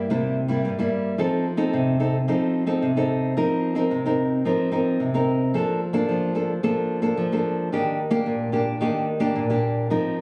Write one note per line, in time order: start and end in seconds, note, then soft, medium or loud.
0.10 0.62 C3 medium
0.10 0.36 G3 medium
0.10 0.36 A#3 medium
0.10 0.36 E4 medium
0.48 0.73 G3 medium
0.48 0.73 A#3 medium
0.48 0.73 E4 medium
0.65 1.16 G2 medium
0.79 1.15 G3 medium
0.79 1.15 A#3 medium
0.79 1.15 E4 medium
1.18 1.70 F3 medium
1.18 1.44 C4 medium
1.18 1.44 D#4 medium
1.18 1.45 A4 medium
1.57 1.95 C4 medium
1.57 1.95 D#4 medium
1.57 1.95 A4 medium
1.73 2.25 C3 medium
2.00 2.16 C4 medium
2.00 2.16 D#4 soft
2.00 2.16 A4 medium
2.28 2.79 F3 medium
2.28 2.64 C4 medium
2.28 2.65 D#4 medium
2.28 2.65 A4 medium
2.67 2.90 C4 medium
2.67 2.91 D#4 medium
2.67 2.91 A4 medium
2.82 3.34 C3 medium
2.96 3.33 C4 medium
2.96 3.33 D#4 medium
2.96 3.33 A4 medium
3.37 3.88 F3 medium
3.37 3.73 C4 soft
3.37 3.73 D#4 medium
3.37 3.73 A#4 medium
3.75 3.99 C4 medium
3.75 3.99 D#4 medium
3.75 3.99 A#4 medium
3.91 4.43 C3 medium
4.05 4.41 C4 medium
4.05 4.42 D#4 medium
4.05 4.42 A#4 medium
4.45 4.97 F3 medium
4.45 4.68 C4 soft
4.45 4.68 D#4 medium
4.45 4.69 A#4 medium
4.72 5.08 C4 medium
4.72 5.09 D#4 medium
4.72 5.09 A#4 medium
5.00 5.51 C3 medium
5.14 5.50 C4 medium
5.14 5.50 D#4 medium
5.14 5.50 A#4 medium
5.54 6.06 F3 medium
5.54 5.79 A#3 medium
5.54 5.80 D4 medium
5.54 5.80 A4 medium
5.93 6.30 A#3 medium
5.93 6.31 D4 medium
5.93 6.31 A4 medium
6.09 6.60 F3 medium
6.35 6.51 A#3 medium
6.35 6.51 D4 medium
6.35 6.52 A4 medium
6.63 7.15 F3 medium
6.63 6.99 A#3 medium
6.63 7.00 D4 soft
6.63 7.00 A4 medium
7.02 7.26 A#3 medium
7.02 7.26 D4 medium
7.02 7.26 A4 medium
7.17 7.69 F3 medium
7.32 7.68 A#3 medium
7.32 7.68 D4 soft
7.32 7.68 A4 medium
7.72 8.24 D#3 medium
7.72 7.98 A#3 soft
7.72 7.98 D4 medium
7.72 7.98 G4 medium
8.11 8.48 A#3 medium
8.11 8.48 D4 medium
8.11 8.48 G4 medium
8.26 8.78 A#2 medium
8.52 8.76 A#3 medium
8.52 8.76 D4 medium
8.52 8.76 G4 medium
8.81 9.32 D#3 medium
8.81 9.06 A#3 medium
8.81 9.06 D4 soft
8.81 9.07 G4 medium
9.20 9.44 A#3 medium
9.20 9.44 D4 medium
9.20 9.44 G4 medium
9.35 9.87 A#2 medium
9.50 9.86 A#3 medium
9.50 9.86 D4 soft
9.50 9.86 G4 medium
9.90 10.21 F3 medium
9.90 10.16 C4 soft
9.90 10.16 D#4 medium
9.90 10.16 A#4 medium